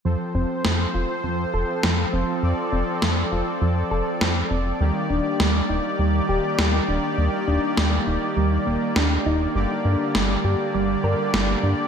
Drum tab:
SD |--o---o-|--o---o-|--o---o-|--o---o-|

SD |--o---o-|